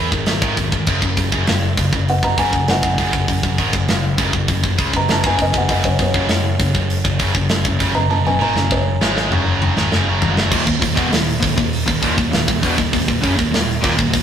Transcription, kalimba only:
0, 0, Header, 1, 2, 480
1, 0, Start_track
1, 0, Tempo, 602410
1, 700, Time_signature, 4, 2, 24, 8
1, 11337, End_track
2, 0, Start_track
2, 0, Title_t, "Kalimba"
2, 0, Program_c, 0, 108
2, 0, Note_on_c, 0, 68, 94
2, 196, Note_off_c, 0, 68, 0
2, 1670, Note_on_c, 0, 78, 102
2, 1777, Note_off_c, 0, 78, 0
2, 1785, Note_on_c, 0, 82, 98
2, 1894, Note_off_c, 0, 82, 0
2, 1904, Note_on_c, 0, 80, 93
2, 2135, Note_off_c, 0, 80, 0
2, 2157, Note_on_c, 0, 78, 108
2, 3556, Note_off_c, 0, 78, 0
2, 3957, Note_on_c, 0, 82, 98
2, 4060, Note_off_c, 0, 82, 0
2, 4080, Note_on_c, 0, 81, 88
2, 4182, Note_off_c, 0, 81, 0
2, 4195, Note_on_c, 0, 80, 97
2, 4300, Note_off_c, 0, 80, 0
2, 4318, Note_on_c, 0, 75, 100
2, 4421, Note_off_c, 0, 75, 0
2, 4444, Note_on_c, 0, 78, 94
2, 4544, Note_off_c, 0, 78, 0
2, 4546, Note_on_c, 0, 75, 88
2, 4655, Note_off_c, 0, 75, 0
2, 4662, Note_on_c, 0, 73, 99
2, 4772, Note_off_c, 0, 73, 0
2, 4790, Note_on_c, 0, 73, 107
2, 5716, Note_off_c, 0, 73, 0
2, 6333, Note_on_c, 0, 82, 97
2, 6448, Note_off_c, 0, 82, 0
2, 6458, Note_on_c, 0, 81, 84
2, 6571, Note_off_c, 0, 81, 0
2, 6587, Note_on_c, 0, 80, 95
2, 6695, Note_off_c, 0, 80, 0
2, 6708, Note_on_c, 0, 82, 91
2, 6937, Note_off_c, 0, 82, 0
2, 6947, Note_on_c, 0, 73, 100
2, 7410, Note_off_c, 0, 73, 0
2, 11337, End_track
0, 0, End_of_file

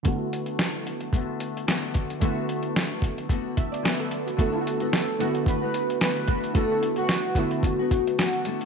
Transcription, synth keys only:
0, 0, Header, 1, 2, 480
1, 0, Start_track
1, 0, Key_signature, 2, "major"
1, 0, Tempo, 541516
1, 46, Time_signature, 4, 2, 24, 8
1, 7668, End_track
2, 0, Start_track
2, 0, Title_t, "Synth keys"
2, 0, Program_c, 0, 88
2, 26, Note_on_c, 0, 50, 58
2, 38, Note_on_c, 0, 57, 50
2, 45, Note_on_c, 0, 59, 54
2, 58, Note_on_c, 0, 64, 51
2, 69, Note_on_c, 0, 66, 65
2, 228, Control_c, 0, 64, 127
2, 1921, Note_off_c, 0, 50, 0
2, 1927, Note_off_c, 0, 57, 0
2, 1930, Note_off_c, 0, 59, 0
2, 1937, Note_off_c, 0, 64, 0
2, 1942, Note_off_c, 0, 66, 0
2, 1950, Note_on_c, 0, 50, 62
2, 1965, Note_on_c, 0, 57, 56
2, 1970, Note_on_c, 0, 59, 53
2, 1988, Note_on_c, 0, 64, 53
2, 1995, Note_on_c, 0, 66, 67
2, 3157, Note_off_c, 0, 66, 0
2, 3170, Note_on_c, 0, 76, 53
2, 3294, Note_off_c, 0, 76, 0
2, 3297, Note_on_c, 0, 74, 62
2, 3400, Note_off_c, 0, 74, 0
2, 3410, Note_on_c, 0, 71, 59
2, 3534, Note_off_c, 0, 71, 0
2, 3545, Note_on_c, 0, 69, 60
2, 3770, Note_off_c, 0, 69, 0
2, 3780, Note_on_c, 0, 66, 52
2, 3843, Note_off_c, 0, 50, 0
2, 3850, Note_off_c, 0, 57, 0
2, 3853, Note_off_c, 0, 59, 0
2, 3862, Note_off_c, 0, 64, 0
2, 3882, Note_on_c, 0, 50, 57
2, 3886, Note_on_c, 0, 57, 57
2, 3893, Note_off_c, 0, 66, 0
2, 3893, Note_on_c, 0, 59, 56
2, 3898, Note_on_c, 0, 64, 52
2, 3900, Control_c, 0, 64, 0
2, 3903, Note_on_c, 0, 66, 67
2, 3981, Note_off_c, 0, 50, 0
2, 3983, Note_off_c, 0, 57, 0
2, 3986, Note_off_c, 0, 59, 0
2, 3989, Note_off_c, 0, 64, 0
2, 3992, Note_off_c, 0, 66, 0
2, 4003, Note_on_c, 0, 50, 62
2, 4010, Note_on_c, 0, 57, 59
2, 4012, Note_on_c, 0, 59, 60
2, 4018, Note_on_c, 0, 64, 60
2, 4026, Note_on_c, 0, 65, 55
2, 4074, Note_off_c, 0, 65, 0
2, 4076, Control_c, 0, 64, 127
2, 4086, Note_on_c, 0, 66, 70
2, 4447, Note_off_c, 0, 50, 0
2, 4451, Note_off_c, 0, 57, 0
2, 4452, Note_off_c, 0, 59, 0
2, 4455, Note_off_c, 0, 64, 0
2, 4489, Note_off_c, 0, 66, 0
2, 4598, Note_on_c, 0, 50, 75
2, 4599, Note_on_c, 0, 57, 71
2, 4605, Note_on_c, 0, 59, 68
2, 4613, Note_on_c, 0, 64, 71
2, 4619, Note_on_c, 0, 66, 86
2, 5308, Note_off_c, 0, 50, 0
2, 5309, Note_off_c, 0, 57, 0
2, 5312, Note_off_c, 0, 59, 0
2, 5316, Note_off_c, 0, 64, 0
2, 5319, Note_off_c, 0, 66, 0
2, 5794, Note_on_c, 0, 50, 64
2, 5801, Note_on_c, 0, 57, 56
2, 5806, Note_on_c, 0, 59, 55
2, 5809, Note_on_c, 0, 64, 55
2, 5821, Note_on_c, 0, 66, 67
2, 5897, Note_off_c, 0, 50, 0
2, 5901, Note_off_c, 0, 57, 0
2, 5903, Note_off_c, 0, 59, 0
2, 5905, Note_off_c, 0, 64, 0
2, 5911, Note_off_c, 0, 66, 0
2, 5933, Note_on_c, 0, 50, 62
2, 5938, Note_on_c, 0, 57, 59
2, 5945, Note_on_c, 0, 59, 60
2, 5953, Note_on_c, 0, 64, 60
2, 5955, Note_on_c, 0, 66, 71
2, 6373, Note_off_c, 0, 50, 0
2, 6375, Note_off_c, 0, 57, 0
2, 6378, Note_off_c, 0, 59, 0
2, 6382, Note_off_c, 0, 64, 0
2, 6384, Note_off_c, 0, 66, 0
2, 6531, Note_on_c, 0, 50, 68
2, 6533, Note_on_c, 0, 57, 59
2, 6538, Note_on_c, 0, 59, 57
2, 6546, Note_on_c, 0, 64, 62
2, 6555, Note_on_c, 0, 66, 71
2, 7236, Note_off_c, 0, 50, 0
2, 7237, Note_off_c, 0, 57, 0
2, 7239, Note_off_c, 0, 59, 0
2, 7243, Note_off_c, 0, 64, 0
2, 7248, Note_off_c, 0, 66, 0
2, 7668, End_track
0, 0, End_of_file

